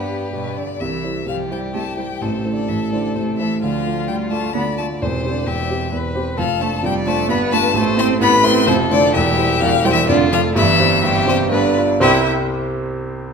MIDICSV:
0, 0, Header, 1, 5, 480
1, 0, Start_track
1, 0, Key_signature, 0, "major"
1, 0, Tempo, 472069
1, 821, Time_signature, 3, 2, 24, 8
1, 3684, Tempo, 460829
1, 9924, Tempo, 473560
1, 11364, Tempo, 489396
1, 13617, End_track
2, 0, Start_track
2, 0, Title_t, "Violin"
2, 0, Program_c, 0, 40
2, 0, Note_on_c, 0, 71, 60
2, 336, Note_off_c, 0, 71, 0
2, 346, Note_on_c, 0, 71, 61
2, 584, Note_on_c, 0, 74, 70
2, 599, Note_off_c, 0, 71, 0
2, 820, Note_on_c, 0, 76, 62
2, 836, Note_off_c, 0, 74, 0
2, 1296, Note_off_c, 0, 76, 0
2, 1301, Note_on_c, 0, 77, 59
2, 1382, Note_off_c, 0, 77, 0
2, 1549, Note_on_c, 0, 79, 60
2, 1630, Note_off_c, 0, 79, 0
2, 1784, Note_on_c, 0, 81, 60
2, 2008, Note_off_c, 0, 81, 0
2, 2014, Note_on_c, 0, 79, 67
2, 2259, Note_on_c, 0, 72, 58
2, 2275, Note_off_c, 0, 79, 0
2, 2576, Note_off_c, 0, 72, 0
2, 2583, Note_on_c, 0, 74, 57
2, 2733, Note_on_c, 0, 76, 66
2, 2748, Note_off_c, 0, 74, 0
2, 2972, Note_off_c, 0, 76, 0
2, 2977, Note_on_c, 0, 74, 59
2, 3199, Note_off_c, 0, 74, 0
2, 3205, Note_on_c, 0, 72, 52
2, 3286, Note_off_c, 0, 72, 0
2, 3440, Note_on_c, 0, 76, 71
2, 3675, Note_off_c, 0, 76, 0
2, 3683, Note_on_c, 0, 77, 64
2, 4151, Note_off_c, 0, 77, 0
2, 4158, Note_on_c, 0, 79, 75
2, 4241, Note_off_c, 0, 79, 0
2, 4406, Note_on_c, 0, 81, 81
2, 4638, Note_on_c, 0, 83, 79
2, 4653, Note_off_c, 0, 81, 0
2, 4883, Note_off_c, 0, 83, 0
2, 4888, Note_on_c, 0, 81, 86
2, 4971, Note_off_c, 0, 81, 0
2, 5120, Note_on_c, 0, 72, 60
2, 5453, Note_on_c, 0, 74, 68
2, 5469, Note_off_c, 0, 72, 0
2, 5613, Note_on_c, 0, 76, 77
2, 5629, Note_off_c, 0, 74, 0
2, 6085, Note_off_c, 0, 76, 0
2, 6562, Note_on_c, 0, 77, 90
2, 6800, Note_on_c, 0, 81, 80
2, 6815, Note_off_c, 0, 77, 0
2, 7034, Note_off_c, 0, 81, 0
2, 7052, Note_on_c, 0, 79, 95
2, 7136, Note_off_c, 0, 79, 0
2, 7278, Note_on_c, 0, 81, 94
2, 7507, Note_off_c, 0, 81, 0
2, 7516, Note_on_c, 0, 83, 85
2, 7600, Note_off_c, 0, 83, 0
2, 7750, Note_on_c, 0, 81, 113
2, 7984, Note_off_c, 0, 81, 0
2, 7994, Note_on_c, 0, 81, 96
2, 8078, Note_off_c, 0, 81, 0
2, 8233, Note_on_c, 0, 84, 103
2, 8316, Note_off_c, 0, 84, 0
2, 8474, Note_on_c, 0, 83, 121
2, 8705, Note_on_c, 0, 84, 119
2, 8721, Note_off_c, 0, 83, 0
2, 8938, Note_off_c, 0, 84, 0
2, 8944, Note_on_c, 0, 72, 105
2, 9027, Note_off_c, 0, 72, 0
2, 9197, Note_on_c, 0, 74, 119
2, 9433, Note_off_c, 0, 74, 0
2, 9438, Note_on_c, 0, 76, 104
2, 9919, Note_on_c, 0, 77, 108
2, 9935, Note_off_c, 0, 76, 0
2, 10166, Note_on_c, 0, 79, 127
2, 10181, Note_off_c, 0, 77, 0
2, 10242, Note_off_c, 0, 79, 0
2, 10249, Note_on_c, 0, 76, 101
2, 10394, Note_off_c, 0, 76, 0
2, 10400, Note_on_c, 0, 74, 104
2, 10481, Note_off_c, 0, 74, 0
2, 10649, Note_on_c, 0, 77, 116
2, 10730, Note_off_c, 0, 77, 0
2, 10887, Note_on_c, 0, 76, 125
2, 11589, Note_off_c, 0, 76, 0
2, 11613, Note_on_c, 0, 72, 105
2, 11691, Note_off_c, 0, 72, 0
2, 11847, Note_on_c, 0, 74, 94
2, 12321, Note_off_c, 0, 74, 0
2, 12333, Note_on_c, 0, 76, 93
2, 12596, Note_off_c, 0, 76, 0
2, 13617, End_track
3, 0, Start_track
3, 0, Title_t, "Violin"
3, 0, Program_c, 1, 40
3, 0, Note_on_c, 1, 67, 56
3, 555, Note_off_c, 1, 67, 0
3, 1295, Note_on_c, 1, 67, 51
3, 2254, Note_on_c, 1, 69, 48
3, 2269, Note_off_c, 1, 67, 0
3, 3682, Note_off_c, 1, 69, 0
3, 3688, Note_on_c, 1, 65, 55
3, 4629, Note_off_c, 1, 65, 0
3, 4651, Note_on_c, 1, 74, 62
3, 5140, Note_on_c, 1, 72, 64
3, 5156, Note_off_c, 1, 74, 0
3, 5604, Note_on_c, 1, 67, 68
3, 5620, Note_off_c, 1, 72, 0
3, 6078, Note_off_c, 1, 67, 0
3, 6084, Note_on_c, 1, 71, 74
3, 6552, Note_on_c, 1, 69, 64
3, 6568, Note_off_c, 1, 71, 0
3, 7037, Note_on_c, 1, 74, 80
3, 7053, Note_off_c, 1, 69, 0
3, 7510, Note_off_c, 1, 74, 0
3, 7517, Note_on_c, 1, 71, 84
3, 7983, Note_off_c, 1, 71, 0
3, 7988, Note_on_c, 1, 72, 88
3, 8459, Note_off_c, 1, 72, 0
3, 8471, Note_on_c, 1, 71, 90
3, 8952, Note_on_c, 1, 69, 81
3, 8968, Note_off_c, 1, 71, 0
3, 9420, Note_on_c, 1, 67, 92
3, 9436, Note_off_c, 1, 69, 0
3, 10390, Note_off_c, 1, 67, 0
3, 10397, Note_on_c, 1, 65, 90
3, 10864, Note_off_c, 1, 65, 0
3, 10870, Note_on_c, 1, 64, 85
3, 11348, Note_off_c, 1, 64, 0
3, 11356, Note_on_c, 1, 67, 96
3, 11826, Note_off_c, 1, 67, 0
3, 11831, Note_on_c, 1, 71, 82
3, 12075, Note_off_c, 1, 71, 0
3, 12321, Note_on_c, 1, 67, 82
3, 12589, Note_off_c, 1, 67, 0
3, 13617, End_track
4, 0, Start_track
4, 0, Title_t, "Grand piano"
4, 0, Program_c, 2, 0
4, 0, Control_c, 2, 64, 127
4, 0, Note_on_c, 2, 43, 66
4, 0, Note_on_c, 2, 55, 44
4, 0, Note_on_c, 2, 62, 45
4, 0, Note_on_c, 2, 74, 45
4, 293, Note_off_c, 2, 55, 0
4, 296, Note_off_c, 2, 62, 0
4, 297, Note_off_c, 2, 74, 0
4, 335, Note_on_c, 2, 62, 34
4, 336, Note_on_c, 2, 55, 37
4, 342, Note_on_c, 2, 74, 42
4, 782, Note_off_c, 2, 55, 0
4, 782, Note_off_c, 2, 62, 0
4, 785, Note_off_c, 2, 74, 0
4, 825, Note_on_c, 2, 36, 52
4, 825, Note_on_c, 2, 48, 42
4, 842, Control_c, 2, 64, 0
4, 851, Note_off_c, 2, 43, 0
4, 993, Control_c, 2, 64, 127
4, 1054, Note_off_c, 2, 36, 0
4, 1054, Note_off_c, 2, 48, 0
4, 1055, Note_on_c, 2, 55, 31
4, 1059, Note_on_c, 2, 64, 27
4, 1063, Note_on_c, 2, 72, 34
4, 1270, Note_off_c, 2, 55, 0
4, 1272, Note_off_c, 2, 64, 0
4, 1275, Note_off_c, 2, 72, 0
4, 1281, Note_on_c, 2, 36, 38
4, 1286, Note_on_c, 2, 48, 40
4, 1518, Note_off_c, 2, 36, 0
4, 1521, Note_off_c, 2, 48, 0
4, 1529, Note_on_c, 2, 55, 39
4, 1536, Note_on_c, 2, 64, 40
4, 1540, Note_on_c, 2, 72, 37
4, 1745, Note_off_c, 2, 55, 0
4, 1749, Note_off_c, 2, 64, 0
4, 1751, Note_off_c, 2, 72, 0
4, 1775, Note_on_c, 2, 36, 37
4, 1775, Note_on_c, 2, 48, 38
4, 2001, Note_on_c, 2, 55, 33
4, 2002, Note_on_c, 2, 64, 33
4, 2005, Note_off_c, 2, 36, 0
4, 2005, Note_off_c, 2, 48, 0
4, 2009, Note_on_c, 2, 72, 34
4, 2222, Note_off_c, 2, 55, 0
4, 2222, Note_off_c, 2, 64, 0
4, 2226, Note_off_c, 2, 72, 0
4, 2252, Note_on_c, 2, 33, 56
4, 2255, Note_on_c, 2, 45, 42
4, 2269, Control_c, 2, 64, 0
4, 2450, Control_c, 2, 64, 127
4, 2485, Note_off_c, 2, 33, 0
4, 2487, Note_off_c, 2, 45, 0
4, 2490, Note_on_c, 2, 57, 30
4, 2491, Note_on_c, 2, 64, 30
4, 2493, Note_on_c, 2, 72, 33
4, 2707, Note_off_c, 2, 57, 0
4, 2708, Note_off_c, 2, 64, 0
4, 2709, Note_off_c, 2, 72, 0
4, 2733, Note_on_c, 2, 33, 45
4, 2736, Note_on_c, 2, 45, 48
4, 2965, Note_off_c, 2, 33, 0
4, 2966, Note_off_c, 2, 45, 0
4, 2971, Note_on_c, 2, 57, 43
4, 2975, Note_on_c, 2, 64, 39
4, 2978, Note_on_c, 2, 72, 43
4, 3186, Note_off_c, 2, 57, 0
4, 3188, Note_off_c, 2, 64, 0
4, 3189, Note_off_c, 2, 72, 0
4, 3210, Note_on_c, 2, 33, 40
4, 3210, Note_on_c, 2, 45, 42
4, 3440, Note_off_c, 2, 33, 0
4, 3440, Note_off_c, 2, 45, 0
4, 3458, Note_on_c, 2, 57, 41
4, 3460, Note_on_c, 2, 64, 35
4, 3461, Note_on_c, 2, 72, 43
4, 3666, Note_off_c, 2, 57, 0
4, 3667, Note_off_c, 2, 64, 0
4, 3667, Note_off_c, 2, 72, 0
4, 3690, Note_on_c, 2, 38, 59
4, 3691, Note_on_c, 2, 50, 52
4, 3704, Control_c, 2, 64, 0
4, 3868, Control_c, 2, 64, 127
4, 3920, Note_off_c, 2, 38, 0
4, 3921, Note_off_c, 2, 50, 0
4, 3932, Note_on_c, 2, 57, 32
4, 3934, Note_on_c, 2, 65, 32
4, 3941, Note_on_c, 2, 74, 42
4, 4145, Note_off_c, 2, 57, 0
4, 4146, Note_off_c, 2, 65, 0
4, 4150, Note_off_c, 2, 74, 0
4, 4166, Note_on_c, 2, 38, 44
4, 4166, Note_on_c, 2, 50, 53
4, 4398, Note_off_c, 2, 38, 0
4, 4398, Note_off_c, 2, 50, 0
4, 4405, Note_on_c, 2, 57, 40
4, 4406, Note_on_c, 2, 65, 41
4, 4415, Note_on_c, 2, 74, 47
4, 4621, Note_off_c, 2, 57, 0
4, 4622, Note_off_c, 2, 65, 0
4, 4627, Note_off_c, 2, 74, 0
4, 4642, Note_on_c, 2, 50, 48
4, 4648, Note_on_c, 2, 38, 41
4, 4878, Note_off_c, 2, 50, 0
4, 4881, Note_off_c, 2, 38, 0
4, 4894, Note_on_c, 2, 65, 42
4, 4897, Note_on_c, 2, 57, 43
4, 4904, Note_on_c, 2, 74, 41
4, 5107, Note_off_c, 2, 65, 0
4, 5108, Note_off_c, 2, 57, 0
4, 5113, Note_off_c, 2, 74, 0
4, 5134, Note_on_c, 2, 28, 58
4, 5138, Note_on_c, 2, 40, 66
4, 5148, Control_c, 2, 64, 0
4, 5290, Control_c, 2, 64, 127
4, 5362, Note_off_c, 2, 28, 0
4, 5364, Note_off_c, 2, 40, 0
4, 5375, Note_on_c, 2, 60, 42
4, 5377, Note_on_c, 2, 67, 37
4, 5384, Note_on_c, 2, 72, 38
4, 5585, Note_off_c, 2, 60, 0
4, 5586, Note_off_c, 2, 67, 0
4, 5590, Note_off_c, 2, 72, 0
4, 5604, Note_on_c, 2, 28, 53
4, 5609, Note_on_c, 2, 40, 52
4, 5834, Note_off_c, 2, 28, 0
4, 5837, Note_off_c, 2, 40, 0
4, 5845, Note_on_c, 2, 60, 49
4, 5849, Note_on_c, 2, 67, 47
4, 5855, Note_on_c, 2, 72, 51
4, 6058, Note_off_c, 2, 60, 0
4, 6060, Note_off_c, 2, 67, 0
4, 6064, Note_off_c, 2, 72, 0
4, 6076, Note_on_c, 2, 28, 48
4, 6077, Note_on_c, 2, 40, 48
4, 6309, Note_off_c, 2, 28, 0
4, 6310, Note_off_c, 2, 40, 0
4, 6315, Note_on_c, 2, 60, 48
4, 6320, Note_on_c, 2, 67, 47
4, 6323, Note_on_c, 2, 72, 55
4, 6532, Note_off_c, 2, 60, 0
4, 6534, Note_off_c, 2, 67, 0
4, 6536, Note_off_c, 2, 72, 0
4, 6560, Note_on_c, 2, 41, 65
4, 6561, Note_on_c, 2, 29, 68
4, 6579, Control_c, 2, 64, 0
4, 6737, Control_c, 2, 64, 127
4, 6780, Note_on_c, 2, 62, 41
4, 6788, Note_on_c, 2, 65, 45
4, 6789, Note_off_c, 2, 41, 0
4, 6790, Note_off_c, 2, 29, 0
4, 6792, Note_on_c, 2, 72, 47
4, 7000, Note_off_c, 2, 62, 0
4, 7005, Note_off_c, 2, 65, 0
4, 7007, Note_off_c, 2, 72, 0
4, 7020, Note_on_c, 2, 29, 63
4, 7021, Note_on_c, 2, 41, 63
4, 7256, Note_off_c, 2, 29, 0
4, 7256, Note_off_c, 2, 41, 0
4, 7264, Note_on_c, 2, 62, 58
4, 7269, Note_on_c, 2, 65, 53
4, 7275, Note_on_c, 2, 72, 55
4, 7481, Note_off_c, 2, 62, 0
4, 7483, Note_off_c, 2, 65, 0
4, 7487, Note_off_c, 2, 72, 0
4, 7494, Note_on_c, 2, 31, 61
4, 7494, Note_on_c, 2, 43, 62
4, 7528, Control_c, 2, 64, 0
4, 7682, Control_c, 2, 64, 127
4, 7733, Note_off_c, 2, 31, 0
4, 7733, Note_off_c, 2, 43, 0
4, 7738, Note_on_c, 2, 62, 54
4, 7745, Note_on_c, 2, 65, 51
4, 7746, Note_on_c, 2, 71, 59
4, 7958, Note_off_c, 2, 62, 0
4, 7962, Note_off_c, 2, 65, 0
4, 7963, Note_off_c, 2, 71, 0
4, 7969, Note_on_c, 2, 33, 74
4, 7971, Note_on_c, 2, 45, 77
4, 8006, Control_c, 2, 64, 0
4, 8157, Control_c, 2, 64, 127
4, 8211, Note_off_c, 2, 33, 0
4, 8212, Note_off_c, 2, 45, 0
4, 8219, Note_on_c, 2, 57, 50
4, 8221, Note_on_c, 2, 64, 51
4, 8228, Note_on_c, 2, 72, 57
4, 8439, Note_off_c, 2, 57, 0
4, 8440, Note_off_c, 2, 64, 0
4, 8444, Note_off_c, 2, 72, 0
4, 8455, Note_on_c, 2, 33, 77
4, 8457, Note_on_c, 2, 45, 79
4, 8695, Note_off_c, 2, 33, 0
4, 8696, Note_off_c, 2, 45, 0
4, 8696, Note_on_c, 2, 57, 64
4, 8700, Note_on_c, 2, 64, 68
4, 8701, Note_on_c, 2, 72, 69
4, 8920, Note_off_c, 2, 57, 0
4, 8922, Note_off_c, 2, 64, 0
4, 8923, Note_off_c, 2, 72, 0
4, 8939, Note_on_c, 2, 29, 66
4, 8939, Note_on_c, 2, 41, 73
4, 8971, Control_c, 2, 64, 0
4, 9136, Control_c, 2, 64, 127
4, 9180, Note_off_c, 2, 29, 0
4, 9180, Note_off_c, 2, 41, 0
4, 9183, Note_on_c, 2, 57, 68
4, 9191, Note_on_c, 2, 64, 57
4, 9192, Note_on_c, 2, 72, 62
4, 9406, Note_off_c, 2, 57, 0
4, 9411, Note_off_c, 2, 64, 0
4, 9411, Note_off_c, 2, 72, 0
4, 9434, Note_on_c, 2, 28, 84
4, 9434, Note_on_c, 2, 40, 94
4, 9459, Control_c, 2, 64, 0
4, 9630, Control_c, 2, 64, 127
4, 9671, Note_off_c, 2, 28, 0
4, 9671, Note_off_c, 2, 40, 0
4, 9678, Note_on_c, 2, 55, 52
4, 9684, Note_on_c, 2, 64, 54
4, 9688, Note_on_c, 2, 72, 57
4, 9897, Note_off_c, 2, 55, 0
4, 9901, Note_off_c, 2, 64, 0
4, 9903, Note_off_c, 2, 72, 0
4, 9924, Note_on_c, 2, 28, 82
4, 9925, Note_on_c, 2, 40, 76
4, 10153, Note_off_c, 2, 28, 0
4, 10153, Note_off_c, 2, 40, 0
4, 10161, Note_on_c, 2, 55, 71
4, 10161, Note_on_c, 2, 64, 67
4, 10170, Note_on_c, 2, 72, 77
4, 10375, Note_off_c, 2, 55, 0
4, 10375, Note_off_c, 2, 64, 0
4, 10380, Note_off_c, 2, 72, 0
4, 10403, Note_on_c, 2, 41, 82
4, 10405, Note_on_c, 2, 29, 75
4, 10419, Control_c, 2, 64, 0
4, 10582, Control_c, 2, 64, 127
4, 10633, Note_off_c, 2, 41, 0
4, 10635, Note_off_c, 2, 29, 0
4, 10645, Note_on_c, 2, 57, 59
4, 10646, Note_on_c, 2, 69, 65
4, 10653, Note_on_c, 2, 74, 68
4, 10858, Note_off_c, 2, 57, 0
4, 10859, Note_off_c, 2, 69, 0
4, 10863, Note_off_c, 2, 74, 0
4, 10876, Note_on_c, 2, 31, 86
4, 10879, Note_on_c, 2, 43, 101
4, 10900, Control_c, 2, 64, 0
4, 11060, Control_c, 2, 64, 127
4, 11111, Note_off_c, 2, 31, 0
4, 11112, Note_off_c, 2, 43, 0
4, 11112, Note_on_c, 2, 60, 56
4, 11121, Note_on_c, 2, 67, 52
4, 11127, Note_on_c, 2, 72, 65
4, 11334, Note_off_c, 2, 60, 0
4, 11339, Note_off_c, 2, 67, 0
4, 11342, Note_off_c, 2, 72, 0
4, 11361, Note_on_c, 2, 43, 82
4, 11362, Note_on_c, 2, 31, 78
4, 11591, Note_off_c, 2, 43, 0
4, 11592, Note_off_c, 2, 31, 0
4, 11595, Note_on_c, 2, 60, 68
4, 11602, Note_on_c, 2, 67, 73
4, 11602, Note_on_c, 2, 72, 76
4, 11812, Note_off_c, 2, 60, 0
4, 11816, Note_off_c, 2, 67, 0
4, 11816, Note_off_c, 2, 72, 0
4, 11832, Note_on_c, 2, 43, 80
4, 11833, Note_on_c, 2, 31, 77
4, 11858, Control_c, 2, 64, 0
4, 12036, Control_c, 2, 64, 127
4, 12073, Note_off_c, 2, 43, 0
4, 12074, Note_off_c, 2, 31, 0
4, 12077, Note_on_c, 2, 62, 58
4, 12082, Note_on_c, 2, 65, 56
4, 12086, Note_on_c, 2, 71, 63
4, 12299, Note_off_c, 2, 62, 0
4, 12302, Note_off_c, 2, 65, 0
4, 12304, Note_off_c, 2, 71, 0
4, 12313, Note_on_c, 2, 72, 91
4, 12314, Note_on_c, 2, 60, 88
4, 12314, Note_on_c, 2, 67, 94
4, 12315, Note_on_c, 2, 36, 95
4, 12317, Note_on_c, 2, 48, 99
4, 12317, Note_on_c, 2, 79, 92
4, 12346, Control_c, 2, 64, 0
4, 12539, Control_c, 2, 64, 127
4, 12585, Note_off_c, 2, 72, 0
4, 12586, Note_off_c, 2, 36, 0
4, 12586, Note_off_c, 2, 60, 0
4, 12586, Note_off_c, 2, 67, 0
4, 12587, Note_off_c, 2, 48, 0
4, 12587, Note_off_c, 2, 79, 0
4, 13617, End_track
5, 0, Start_track
5, 0, Title_t, "Cello"
5, 0, Program_c, 3, 42
5, 0, Note_on_c, 3, 59, 48
5, 336, Note_off_c, 3, 59, 0
5, 342, Note_on_c, 3, 47, 59
5, 584, Note_on_c, 3, 50, 50
5, 600, Note_off_c, 3, 47, 0
5, 824, Note_off_c, 3, 50, 0
5, 830, Note_on_c, 3, 52, 56
5, 1291, Note_off_c, 3, 52, 0
5, 1298, Note_on_c, 3, 53, 52
5, 1536, Note_on_c, 3, 55, 57
5, 1551, Note_off_c, 3, 53, 0
5, 1758, Note_off_c, 3, 55, 0
5, 1764, Note_on_c, 3, 57, 63
5, 1845, Note_off_c, 3, 57, 0
5, 2010, Note_on_c, 3, 55, 45
5, 2091, Note_off_c, 3, 55, 0
5, 2242, Note_on_c, 3, 48, 48
5, 2557, Note_off_c, 3, 48, 0
5, 2564, Note_on_c, 3, 50, 47
5, 2629, Note_off_c, 3, 50, 0
5, 2738, Note_on_c, 3, 52, 52
5, 2819, Note_off_c, 3, 52, 0
5, 2959, Note_on_c, 3, 50, 53
5, 3198, Note_off_c, 3, 50, 0
5, 3203, Note_on_c, 3, 48, 54
5, 3445, Note_on_c, 3, 52, 57
5, 3460, Note_off_c, 3, 48, 0
5, 3675, Note_off_c, 3, 52, 0
5, 3681, Note_on_c, 3, 53, 59
5, 4163, Note_on_c, 3, 55, 57
5, 4179, Note_off_c, 3, 53, 0
5, 4405, Note_on_c, 3, 57, 65
5, 4420, Note_off_c, 3, 55, 0
5, 4635, Note_off_c, 3, 57, 0
5, 4641, Note_on_c, 3, 59, 74
5, 4724, Note_off_c, 3, 59, 0
5, 4892, Note_on_c, 3, 57, 54
5, 4975, Note_off_c, 3, 57, 0
5, 5134, Note_on_c, 3, 48, 58
5, 5437, Note_on_c, 3, 50, 57
5, 5453, Note_off_c, 3, 48, 0
5, 5611, Note_on_c, 3, 52, 56
5, 5626, Note_off_c, 3, 50, 0
5, 6083, Note_off_c, 3, 52, 0
5, 6547, Note_on_c, 3, 53, 76
5, 6630, Note_off_c, 3, 53, 0
5, 6796, Note_on_c, 3, 57, 73
5, 6879, Note_off_c, 3, 57, 0
5, 7043, Note_on_c, 3, 55, 78
5, 7279, Note_on_c, 3, 57, 82
5, 7294, Note_off_c, 3, 55, 0
5, 7506, Note_on_c, 3, 59, 91
5, 7521, Note_off_c, 3, 57, 0
5, 7749, Note_on_c, 3, 57, 81
5, 7765, Note_off_c, 3, 59, 0
5, 7977, Note_off_c, 3, 57, 0
5, 7983, Note_on_c, 3, 57, 93
5, 8227, Note_on_c, 3, 60, 100
5, 8242, Note_off_c, 3, 57, 0
5, 8450, Note_off_c, 3, 60, 0
5, 8456, Note_on_c, 3, 59, 96
5, 8681, Note_off_c, 3, 59, 0
5, 8688, Note_on_c, 3, 60, 95
5, 8944, Note_on_c, 3, 48, 93
5, 8960, Note_off_c, 3, 60, 0
5, 9173, Note_off_c, 3, 48, 0
5, 9179, Note_on_c, 3, 50, 78
5, 9426, Note_on_c, 3, 52, 88
5, 9442, Note_off_c, 3, 50, 0
5, 9905, Note_off_c, 3, 52, 0
5, 9911, Note_on_c, 3, 53, 89
5, 9993, Note_off_c, 3, 53, 0
5, 10157, Note_on_c, 3, 55, 87
5, 10189, Note_off_c, 3, 55, 0
5, 10245, Note_on_c, 3, 52, 90
5, 10307, Note_off_c, 3, 52, 0
5, 10392, Note_on_c, 3, 50, 98
5, 10622, Note_off_c, 3, 50, 0
5, 10628, Note_on_c, 3, 53, 95
5, 10709, Note_off_c, 3, 53, 0
5, 10867, Note_on_c, 3, 52, 106
5, 11588, Note_on_c, 3, 48, 90
5, 11603, Note_off_c, 3, 52, 0
5, 11819, Note_off_c, 3, 48, 0
5, 11825, Note_on_c, 3, 50, 84
5, 12310, Note_off_c, 3, 50, 0
5, 12322, Note_on_c, 3, 64, 92
5, 12590, Note_off_c, 3, 64, 0
5, 13617, End_track
0, 0, End_of_file